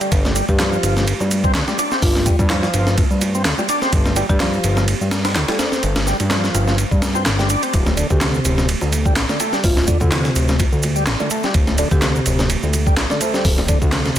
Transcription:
0.01 tonewheel organ G3, ride, shaker
0.12 analog synth bass G1, kick, ride, shaker
0.25 snare, high bongo, high conga, shaker
0.35 tonewheel organ G3, ride, shaker
0.49 analog synth bass G2, marimba G4, kick, shaker
0.59 tonewheel organ F3, marimba G4, snare, clap, ride, high bongo, high conga, low conga, shaker
0.73 shaker
0.83 analog synth bass G1, ride, high bongo, shaker
0.97 snare, high conga, shaker
1.07 ride, shaker
1.20 analog synth bass G2, high bongo, shaker
1.30 ride, high conga, shaker
1.44 tonewheel organ C4, kick, high bongo, shaker
1.55 analog synth bass D2, snare, clap, ride, shaker
1.68 tonewheel organ G3, snare, high conga, shaker
1.78 tonewheel organ D4, ride, high bongo, shaker
1.92 tonewheel organ C4, snare, shaker
2.02 analog synth bass G1, marimba F4, kick, open hi-hat, high bongo, shaker
2.15 marimba F4, snare, high conga, shaker
2.26 tonewheel organ G3, kick, ride, shaker
2.39 analog synth bass G2, kick, high bongo, shaker
2.50 tonewheel organ F3, snare, clap, ride, high conga, low conga, shaker
2.63 snare, high bongo, shaker
2.74 analog synth bass G1, ride, shaker
2.87 snare, high conga, shaker
2.98 kick, ride, high bongo, shaker
3.11 analog synth bass G2, shaker
3.21 ride, high bongo, high conga, shaker
3.35 tonewheel organ C4, shaker
3.45 analog synth bass D2, snare, clap, ride, shaker
3.58 tonewheel organ G3, high bongo, high conga, shaker
3.69 tonewheel organ D4, ride, shaker
3.82 tonewheel organ C4, snare, high bongo, shaker
3.93 analog synth bass G1, kick, ride, shaker
4.06 snare, high conga, shaker
4.16 tonewheel organ G3, ride, high bongo, shaker
4.29 analog synth bass G2, marimba G4, kick, shaker
4.40 tonewheel organ F3, marimba G4, snare, clap, ride, high bongo, high conga, low conga, shaker
4.53 shaker
4.64 analog synth bass G1, ride, shaker
4.77 snare, high bongo, high conga, shaker
4.88 ride, shaker
5.00 analog synth bass G2, high bongo, shaker
5.11 snare, ride, high conga, shaker
5.25 tonewheel organ C4, snare, ride, shaker
5.36 analog synth bass D2, snare, clap, ride, high bongo, shaker
5.48 tonewheel organ G3, marimba A4, snare, ride, high conga, shaker
5.59 tonewheel organ D4, marimba C5, snare, ride, high bongo, shaker
5.72 tonewheel organ C4, marimba C5, snare, shaker
5.83 analog synth bass G1, ride, shaker
5.96 snare, ride, high bongo, high conga, shaker
6.07 tonewheel organ G3, snare, shaker
6.20 analog synth bass G2, ride, high bongo, shaker
6.30 tonewheel organ F3, snare, clap, ride, high conga, low conga, shaker
6.44 snare, shaker
6.55 analog synth bass G1, ride, high bongo, shaker
6.68 snare, high conga, shaker
6.78 ride, high bongo, shaker
6.91 analog synth bass G2, kick, shaker
7.02 snare, ride, high conga, shaker
7.15 tonewheel organ C4, high bongo, shaker
7.26 analog synth bass G1, snare, clap, ride, shaker
7.39 tonewheel organ G3, snare, high bongo, high conga, shaker
7.50 tonewheel organ D4, ride, shaker
7.63 tonewheel organ C4, ride, shaker
7.73 analog synth bass D1, kick, ride, shaker
7.86 snare, high bongo, high conga, shaker
7.97 tonewheel organ D3, ride, shaker
8.10 analog synth bass D2, marimba G4, kick, shaker
8.21 tonewheel organ C3, marimba G4, snare, clap, ride, high bongo, high conga, low conga, shaker
8.34 shaker
8.45 analog synth bass D1, ride, high bongo, shaker
8.58 snare, high conga, shaker
8.69 ride, shaker
8.81 analog synth bass D2, high bongo, shaker
8.92 ride, high conga, shaker
9.05 tonewheel organ G3, kick, high bongo, shaker
9.16 analog synth bass A1, snare, clap, ride, shaker
9.29 tonewheel organ D3, snare, high conga, shaker
9.40 tonewheel organ A3, ride, high bongo, shaker
9.53 tonewheel organ G3, snare, shaker
9.64 analog synth bass D1, marimba F4, kick, open hi-hat, high bongo, shaker
9.77 marimba F4, snare, high conga, shaker
9.88 tonewheel organ D3, kick, ride, shaker
10.00 analog synth bass D2, kick, high bongo, shaker
10.11 tonewheel organ C3, snare, clap, ride, high conga, low conga, shaker
10.25 snare, high bongo, shaker
10.36 analog synth bass D1, ride, shaker
10.49 snare, high conga, shaker
10.59 kick, ride, high bongo, shaker
10.73 analog synth bass D2, shaker
10.83 ride, high bongo, high conga, shaker
10.96 tonewheel organ G3, shaker
11.07 analog synth bass A1, snare, clap, ride, shaker
11.20 tonewheel organ D3, high bongo, high conga, shaker
11.30 tonewheel organ A3, ride, shaker
11.44 tonewheel organ G3, snare, high bongo, shaker
11.54 analog synth bass D1, kick, ride, shaker
11.67 snare, high conga, shaker
11.78 tonewheel organ D3, ride, high bongo, shaker
11.91 analog synth bass D2, marimba G4, kick, shaker
12.02 tonewheel organ C3, marimba G4, snare, clap, ride, high bongo, high conga, low conga, shaker
12.15 shaker
12.26 analog synth bass D1, ride, shaker
12.39 snare, high bongo, high conga, shaker
12.50 ride, shaker
12.63 analog synth bass D2, high bongo, shaker
12.73 ride, high conga, shaker
12.87 tonewheel organ G3, kick, shaker
12.97 analog synth bass A1, snare, clap, ride, high bongo, shaker
13.10 tonewheel organ D3, marimba A4, snare, high conga, shaker
13.21 tonewheel organ A3, marimba C5, ride, high bongo, shaker
13.34 tonewheel organ G3, marimba C5, snare, shaker
13.45 analog synth bass D1, kick, open hi-hat, shaker
13.58 snare, high bongo, high conga, shaker
13.68 tonewheel organ D3, kick, ride, shaker
13.82 analog synth bass D2, kick, high bongo, shaker
13.92 tonewheel organ C3, snare, clap, ride, high conga, low conga, shaker
14.05 snare, shaker
14.16 shaker

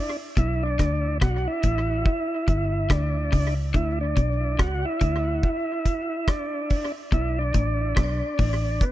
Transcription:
Already playing: tonewheel organ D4
0.37 fingered electric bass B1, clean electric guitar B2, tonewheel organ E4, kick, hi-hat pedal
0.63 tonewheel organ D4
0.79 fingered electric bass D2, clean electric guitar D3, kick, cross-stick, closed hi-hat
1.21 fingered electric bass B1, clean electric guitar B2, tonewheel organ F#4, kick, cross-stick
1.47 tonewheel organ E4
1.63 fingered electric bass A1, clean electric guitar A2, kick, closed hi-hat
2.06 tonewheel organ E4, kick
2.48 fingered electric bass G1, clean electric guitar G2, tonewheel organ E4, kick, closed hi-hat
2.90 fingered electric bass D2, clean electric guitar D3, tonewheel organ D4, kick, cross-stick
3.32 fingered electric bass C#2, clean electric guitar C#3, kick, open hi-hat
3.74 fingered electric bass D2, clean electric guitar D3, tonewheel organ E4, kick, hi-hat pedal
4.01 tonewheel organ D4
4.17 fingered electric bass B1, clean electric guitar B2, kick, closed hi-hat
4.59 fingered electric bass C#2, clean electric guitar C#3, tonewheel organ F#4, kick, cross-stick
4.85 tonewheel organ E4
5.01 fingered electric bass D2, clean electric guitar D3, kick, closed hi-hat
5.43 tonewheel organ E4, kick
5.86 kick, closed hi-hat
6.28 tonewheel organ D4, kick, cross-stick
6.70 kick, open hi-hat
7.12 fingered electric bass B1, clean electric guitar B2, tonewheel organ E4, kick, hi-hat pedal
7.39 tonewheel organ D4
7.54 fingered electric bass A1, clean electric guitar A2, kick, closed hi-hat
7.96 fingered electric bass B1, clean electric guitar B2, tonewheel organ D4, kick, cross-stick
8.39 fingered electric bass A1, clean electric guitar A2, kick, open hi-hat
8.81 tonewheel organ B3, kick, hi-hat pedal

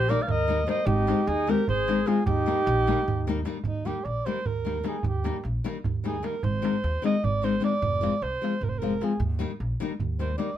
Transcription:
Already playing: upright bass A#1, alto flute G4, alto saxophone C5
0.09 nylon-string guitar D#3 G3 A#3 D#4, alto flute A#4, alto saxophone D5, darbuka tek
0.22 alto flute D5, alto saxophone F5
0.28 upright bass D#2, alto flute A#4, alto saxophone D#5, darbuka dum
0.48 nylon-string guitar D#3 G3 A#3 D#4, darbuka tek
0.59 darbuka tek
0.67 nylon-string guitar D#3 G3 A#3 D#4, alto flute C5, alto saxophone D#5, darbuka tek
0.86 upright bass G#1, alto flute D#4, alto saxophone G4, darbuka dum
1.07 nylon-string guitar D#3 G#3 C4 D#4, darbuka tek
1.27 upright bass D#2, alto flute D#4, alto saxophone G#4, darbuka tek
1.47 nylon-string guitar D#3 G#3 C4 D#4, alto flute G4, alto saxophone A#4, darbuka tek
1.68 upright bass G#1, alto flute G#4, alto saxophone C5, darbuka dum
1.88 nylon-string guitar D#3 G#3 C4 D#4, darbuka tek
1.98 darbuka tek
2.06 nylon-string guitar D#3 G#3 C4 D#4, alto flute F4, alto saxophone G#4, darbuka tek
2.26 upright bass D#2, alto flute D#4, alto saxophone G4, darbuka dum
2.38 darbuka tek
2.46 nylon-string guitar D#3 G3 A#3 D#4, darbuka tek
2.66 upright bass A#1, darbuka tek
2.87 nylon-string guitar D#3 G3 A#3 D#4, darbuka tek
3.08 upright bass D#2, darbuka dum
3.18 darbuka tek
3.27 nylon-string guitar D#3 G3 A#3 D#4, darbuka tek
3.37 darbuka tek
3.45 nylon-string guitar D#3 G3 A#3 D#4, darbuka tek
3.55 darbuka tek
3.64 upright bass D#2, alto saxophone D#4, darbuka dum
3.85 nylon-string guitar D#3 G3 A#3 D#4, alto saxophone G4, darbuka tek
4.05 upright bass A#1, alto saxophone D5, darbuka tek
4.26 nylon-string guitar D#3 G3 A#3 D#4, alto saxophone C5, darbuka tek
4.36 darbuka tek
4.46 upright bass D#2, alto saxophone A#4, darbuka dum
4.65 nylon-string guitar D#3 G3 A#3 D#4, darbuka tek
4.76 darbuka tek
4.84 nylon-string guitar D#3 G3 A#3 D#4, darbuka tek
4.89 alto saxophone G#4
5.03 upright bass D#2, alto saxophone G4, darbuka dum
5.14 darbuka tek
5.24 nylon-string guitar D#3 G3 A#3 D#4, darbuka tek
5.44 upright bass A#1, darbuka tek
5.64 nylon-string guitar D#3 G3 A#3 D#4, darbuka tek
5.76 darbuka tek
5.84 upright bass D#2, darbuka dum
6.04 nylon-string guitar D#3 G3 A#3 D#4, alto saxophone G#4, darbuka tek
6.15 darbuka tek
6.23 nylon-string guitar D#3 G3 A#3 D#4, alto saxophone A#4, darbuka tek
6.43 upright bass G#1, alto saxophone C5, darbuka dum
6.54 darbuka tek
6.62 nylon-string guitar D#3 G#3 C4 D#4, darbuka tek
6.84 upright bass D#2, darbuka tek
7.02 nylon-string guitar D#3 G#3 C4 D#4, alto saxophone D#5, darbuka tek
7.15 darbuka tek
7.24 upright bass G#1, alto saxophone D5, darbuka dum
7.42 nylon-string guitar D#3 G#3 C4 D#4, alto saxophone C5, darbuka tek
7.60 nylon-string guitar D#3 G#3 C4 D#4, darbuka tek
7.64 alto saxophone D5
7.82 upright bass F1, darbuka dum
7.93 darbuka tek
8.01 nylon-string guitar F3 G#3 C4 F4, darbuka tek
8.14 darbuka tek
8.22 upright bass C2, alto saxophone C5, darbuka tek
8.34 darbuka tek
8.41 nylon-string guitar F3 G#3 C4 F4, darbuka tek
8.54 darbuka tek
8.61 upright bass F1, alto saxophone A#4, darbuka dum
8.69 alto saxophone C5
8.79 nylon-string guitar F3 G#3 C4, alto saxophone A#4
8.83 nylon-string guitar F4, darbuka tek
8.92 darbuka tek
9.01 nylon-string guitar F3 G#3 C4 F4, alto saxophone G#4, darbuka tek
9.11 darbuka tek
9.20 upright bass D#2, darbuka dum
9.30 darbuka tek
9.39 nylon-string guitar D#3 G3 A#3 D#4, darbuka tek
9.60 upright bass A#1, darbuka tek
9.80 nylon-string guitar D#3 G3 A#3 D#4, darbuka tek
9.90 darbuka tek
10.00 upright bass D#2, darbuka dum
10.19 nylon-string guitar D#3 G3 A#3 D#4, alto saxophone C5, darbuka tek
10.38 nylon-string guitar D#3 G3 A#3 D#4, alto saxophone D5, darbuka tek

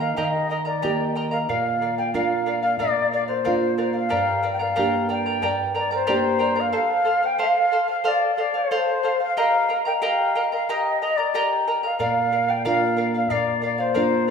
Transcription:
Already playing: nylon-string guitar D#3 A#3 D#4 G4
0.00 charango A#4 D#5 A#5, quena F5
0.16 nylon-string guitar D#3, charango G4 A#4 D#5 G5 A#5, quena D#5
0.24 quena F5
0.30 quena D#5
0.50 charango A#4 D#5 G5 A#5, quena D#5
0.65 charango A#4 D#5 A#5, quena D5
0.82 nylon-string guitar A#3 D#4 G4, charango G4 A#4 D#5 G5 A#5
1.15 charango A#4 D#5 G5 A#5
1.31 charango A#4 D#5 A#5, quena F5
1.49 nylon-string guitar A#2, charango A#4 D5 F5, quena F5
1.81 charango A#4 D5 F5
1.97 charango D5 F5, quena G5
2.13 nylon-string guitar A#3 D4 F4, charango A#4 D5 F5, quena F5
2.46 charango A#4 D5 F5
2.62 charango D5 F5, quena F5
2.78 nylon-string guitar A#2, charango A#4 D5 F5, quena D5
3.12 charango A#4 D5 F5, quena D5
3.27 quena C5, charango D5 F5
3.44 nylon-string guitar A#3 D4 F4, charango A#4 D5 F5
3.78 charango A#4 D5 F5
3.93 charango D5 F5, quena F5
4.09 nylon-string guitar G2, charango G4 A#4 D5 G5 A#5
4.42 charango A#4 D5 G5 A#5
4.53 quena G5
4.59 charango A#4 D5 A#5, quena F5
4.76 nylon-string guitar A#3 D4 G4, charango G4 A#4 D5 G5 A#5
5.09 charango A#4 D5 G5 A#5, quena G5
5.26 charango A#4 D5 A#5
5.42 nylon-string guitar G2, charango G4 A#4 D5 G5 A#5
5.74 charango A#4 D5 G5 A#5, quena D5
5.91 charango A#4 D5 A#5, quena C5
6.07 nylon-string guitar A#3 D4 G4, charango G4 A#4 D5 G5 A#5
6.39 charango A#4 D5 G5 A#5
6.56 charango A#4 D5 A#5, quena F5
6.72 charango A4 C5 F5, quena F5
7.04 charango A4 C5 F5
7.23 charango C5 F5, quena G5
7.38 charango A4 C5 F5, quena F5
7.72 charango A4 C5 F5
7.88 charango C5 F5, quena F5
8.04 charango A4 C5 F5, quena D5
8.34 charango A4 C5 F5, quena F5
8.40 quena D5
8.54 charango C5 F5, quena C5
8.71 charango A4 C5 F5
9.03 charango A4 C5 F5
9.20 charango C5 F5, quena F5
9.37 charango G4 A#4 D#5 G5 A#5, quena F5
9.69 charango A#4 D#5 G5 A#5
9.85 charango A#4 D#5 A#5, quena G5
10.02 charango G4 A#4 D#5 G5 A#5, quena F5
10.35 charango A#4 D#5 G5 A#5
10.52 charango A#4 D#5 A#5, quena F5
10.69 charango G4 A#4 D#5 G5 A#5, quena D#5
11.00 charango A#4 D#5 G5 A#5, quena D#5
11.16 charango A#4 D#5 A#5, quena D5
11.34 charango G4 A#4 D#5 G5 A#5
11.67 charango A#4 D#5 G5 A#5
11.83 charango A#4 D#5 A#5, quena F5
11.99 nylon-string guitar A#2, charango A#4 D5 F5, quena F5
12.32 charango A#4 D5 F5
12.48 charango D5 F5, quena G5
12.65 nylon-string guitar A#3 D4 F4, charango A#4 D5 F5, quena F5
12.97 charango A#4 D5 F5
13.14 charango D5 F5, quena F5
13.30 nylon-string guitar A#2, charango A#4 D5 F5, quena D5
13.62 charango A#4 D5 F5, quena D5
13.78 quena C5, charango D5 F5
13.94 nylon-string guitar A#3 D4 F4, charango A#4 D5 F5

